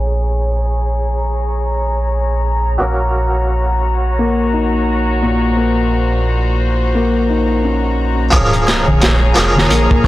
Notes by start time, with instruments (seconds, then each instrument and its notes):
Already playing: analog synth bass A#1, harpsichord F3 A#3 C#4 G#4, violin section G#4 C#5 A#5
2.78 analog synth bass A#1, harpsichord F#3 A#3 C#4, violin section F#4
2.83 harpsichord A#4
4.19 felt piano A#3
4.53 felt piano D#4
5.22 felt piano A#2
5.56 felt piano A#3, violin section C5
6.95 felt piano A#3
7.29 felt piano D#4
7.64 felt piano C#4
8.31 harpsichord F3 A#3 C#4, violin section G#4 C#5 A#5, kick, closed hi-hat, impact, darbuka tek
8.35 harpsichord G#4
8.53 closed hi-hat, darbuka tek
8.67 snare, closed hi-hat, darbuka tek
8.86 analog synth bass A#1, darbuka tek, darbuka dum
9.00 snare, closed hi-hat, darbuka tek
9.34 analog synth bass F1, harpsichord F3 A#3 C#4, snare, closed hi-hat, darbuka tek
9.39 harpsichord G#4
9.56 snare, darbuka tek, darbuka dum
9.70 analog synth bass A#1, felt piano A#3, closed hi-hat, darbuka tek
9.91 kick, darbuka tek
10.04 kick